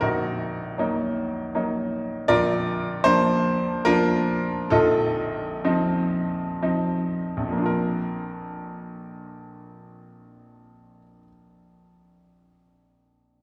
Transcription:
0.01 2.25 A#0 medium
0.01 2.25 A#1 medium
0.01 0.78 D#4 medium
0.01 1.88 F#4 medium
0.01 1.91 A#4 medium
0.78 1.50 F#3 medium
0.78 1.51 A#3 medium
0.78 1.51 D#4 medium
1.55 2.26 F#3 medium
1.55 2.26 A#3 medium
1.55 2.26 D#4 medium
2.28 4.68 A#0 medium
2.28 4.68 A#1 medium
2.28 3.01 F4 medium
2.28 3.01 A#4 medium
2.28 3.05 D5 loud
3.04 3.83 F3 medium
3.04 3.82 A#3 medium
3.04 3.83 D4 medium
3.04 3.86 C5 loud
3.85 4.68 F3 medium
3.85 4.68 A#3 medium
3.85 4.68 D4 medium
3.85 4.68 F4 loud
3.85 4.71 A#4 loud
4.70 7.64 A#0 medium
4.70 7.36 A#1 medium
4.70 5.63 D#4 medium
4.70 7.12 F4 medium
4.70 7.15 A4 loud
5.64 6.59 F3 medium
5.64 6.59 C4 medium
5.64 6.59 D#4 medium
6.62 7.45 F3 medium
6.62 7.64 C4 medium
6.62 7.64 D#4 medium
7.37 10.98 A#1 medium
7.42 11.03 F2 soft
7.47 11.08 F3 medium
7.52 11.13 A#3 medium
7.58 11.18 D4 medium
7.62 11.23 F4 medium
7.62 11.27 A#4 medium

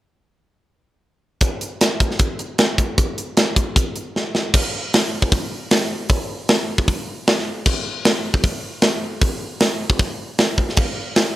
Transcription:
1.41 kick loud
1.41 closed hi-hat medium
1.61 closed hi-hat medium
1.81 snare loud
1.81 closed hi-hat medium
2.00 kick medium
2.00 closed hi-hat medium
2.11 snare soft
2.19 kick loud
2.19 closed hi-hat medium
2.39 closed hi-hat medium
2.58 snare loud
2.58 closed hi-hat medium
2.78 kick medium
2.78 closed hi-hat medium
2.98 kick loud
2.98 closed hi-hat medium
3.18 closed hi-hat medium
3.37 snare loud
3.37 closed hi-hat medium
3.56 kick medium
3.56 closed hi-hat medium
3.76 kick loud
3.76 closed hi-hat medium
3.96 closed hi-hat medium
4.16 snare medium
4.35 snare medium
4.54 kick loud
4.54 crash loud
4.94 snare loud
4.94 open hi-hat medium
5.22 kick medium
5.32 kick loud
5.32 open hi-hat medium
5.71 snare loud
5.71 open hi-hat medium
5.81 snare soft
6.09 kick loud
6.09 open hi-hat medium
6.49 snare loud
6.49 open hi-hat medium
6.78 kick medium
6.88 kick medium
6.88 open hi-hat medium
7.27 snare loud
7.27 open hi-hat medium
7.38 snare soft
7.66 kick loud
7.66 crash loud
8.05 snare loud
8.05 open hi-hat medium
8.34 kick medium
8.44 kick loud
8.44 open hi-hat medium
8.82 snare loud
8.82 open hi-hat medium
9.21 kick loud
9.21 open hi-hat medium
9.60 snare loud
9.60 open hi-hat medium
9.90 kick medium
9.99 kick loud
9.99 open hi-hat medium
10.38 snare loud
10.38 open hi-hat medium
10.58 kick medium
10.69 snare soft
10.77 kick loud
10.77 crash loud
11.16 snare loud
11.16 open hi-hat medium

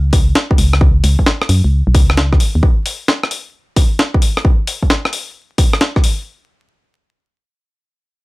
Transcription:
0.00 0.34 C#2 medium
0.13 kick loud
0.13 open hi-hat loud
0.35 snare loud
0.51 kick loud
0.58 1.02 C#2 medium
0.58 open hi-hat medium
0.73 cross-stick medium
0.81 kick loud
1.04 1.17 C#2 medium
1.04 open hi-hat loud
1.19 kick medium
1.26 snare loud
1.42 cross-stick medium
1.49 1.62 F#2 loud
1.49 open hi-hat medium
1.64 1.83 C#2 medium
1.87 1.96 B1 loud
1.95 2.38 C#2 loud
1.95 kick loud
1.95 open hi-hat loud
2.10 cross-stick medium
2.17 snare loud
2.33 kick loud
2.33 cross-stick soft
2.40 open hi-hat medium
2.55 2.62 D#2 medium
2.63 kick loud
2.86 open hi-hat loud
3.08 snare loud
3.23 cross-stick medium
3.31 open hi-hat medium
3.76 kick medium
3.76 open hi-hat loud
3.99 snare loud
4.14 kick medium
4.22 open hi-hat medium
4.37 cross-stick medium
4.45 kick loud
4.67 open hi-hat loud
4.83 kick medium
4.90 snare loud
5.05 cross-stick medium
5.13 open hi-hat medium
5.58 kick loud
5.58 open hi-hat loud
5.73 cross-stick medium
5.81 snare loud
5.96 kick medium
5.96 cross-stick soft
6.04 open hi-hat medium

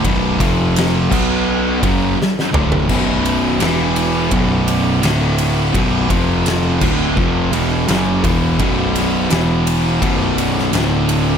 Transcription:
0.04 0.37 B0 loud
0.04 0.38 B1 medium
0.04 0.38 F#2 loud
0.04 0.39 B2 loud
0.04 kick loud
0.04 ride loud
0.39 1.07 F1 medium
0.39 1.10 F2 loud
0.39 1.09 C3 medium
0.39 1.09 F3 loud
0.39 kick loud
0.39 snare soft
0.39 ride medium
0.76 snare loud
0.76 ride loud
1.09 1.78 B1 medium
1.09 1.80 B2 medium
1.09 1.80 F#3 medium
1.09 1.81 B3 medium
1.09 kick loud
1.09 crash loud
1.82 2.16 F#1 medium
1.82 2.16 F#2 loud
1.82 2.17 C#3 loud
1.82 2.17 F#3 medium
1.82 kick loud
1.82 ride medium
2.17 muted distorted electric guitar stroke medium
2.17 muted picked electric bass stroke soft
2.22 snare medium
2.39 snare medium
2.52 2.87 D1 medium
2.52 2.87 D2 medium
2.52 2.88 A2 medium
2.52 2.88 D3 loud
2.52 mid tom loud
2.72 floor tom loud
2.89 3.57 B0 loud
2.89 3.59 B1 loud
2.89 3.60 F#2 loud
2.89 3.60 B2 medium
2.89 kick loud
2.89 crash loud
3.25 ride medium
3.60 4.28 E1 loud
3.60 4.30 E2 medium
3.60 4.31 B2 loud
3.60 4.31 E3 medium
3.60 snare loud
3.60 ride loud
3.96 ride medium
4.31 4.99 B0 medium
4.31 5.02 B1 loud
4.31 5.02 F#2 loud
4.31 5.03 B2 loud
4.31 kick loud
4.31 ride loud
4.68 ride medium
5.02 5.70 D1 loud
5.02 5.72 D2 loud
5.02 5.73 A2 loud
5.02 5.73 D3 medium
5.02 snare loud
5.02 ride loud
5.38 ride medium
5.73 6.08 B0 loud
5.73 6.08 B1 medium
5.73 6.09 F#2 loud
5.73 6.09 B2 loud
5.73 kick loud
5.73 ride loud
6.09 6.77 F1 loud
6.09 6.79 F2 medium
6.09 6.80 C3 medium
6.09 6.80 F3 loud
6.09 kick loud
6.09 ride medium
6.46 snare loud
6.46 ride loud
6.80 7.14 D1 loud
6.80 7.15 D2 medium
6.80 7.16 A2 medium
6.80 7.16 D3 medium
6.80 kick loud
6.80 crash loud
7.17 7.50 F1 medium
7.17 7.51 F2 loud
7.17 7.52 C3 loud
7.17 7.52 F3 loud
7.17 kick loud
7.51 7.85 E1 loud
7.51 7.87 E2 medium
7.51 7.87 B2 loud
7.51 7.88 E3 loud
7.51 ride medium
7.88 8.21 F#1 medium
7.88 8.23 F#2 medium
7.88 8.23 C#3 medium
7.88 8.23 F#3 loud
7.88 snare loud
7.88 ride loud
8.24 8.57 E1 loud
8.24 8.59 E2 loud
8.24 8.59 B2 medium
8.24 8.59 E3 loud
8.24 kick loud
8.24 ride medium
8.59 9.27 B0 loud
8.59 9.30 B1 loud
8.59 9.30 F#2 loud
8.59 9.30 B2 loud
8.59 kick loud
8.59 ride medium
8.96 snare soft
8.96 ride medium
9.30 9.98 E1 loud
9.30 10.00 E2 medium
9.30 10.01 B2 medium
9.30 10.01 E3 loud
9.30 snare loud
9.30 ride medium
9.67 ride medium
10.01 10.69 B0 loud
10.01 10.71 B1 loud
10.01 10.72 F#2 loud
10.01 10.72 B2 loud
10.01 kick loud
10.01 ride loud
10.38 ride medium
10.58 snare soft
10.73 11.38 D1 loud
10.73 11.38 D2 medium
10.73 11.38 A2 medium
10.73 11.38 D3 loud
10.73 snare loud
10.73 ride loud
11.09 ride medium

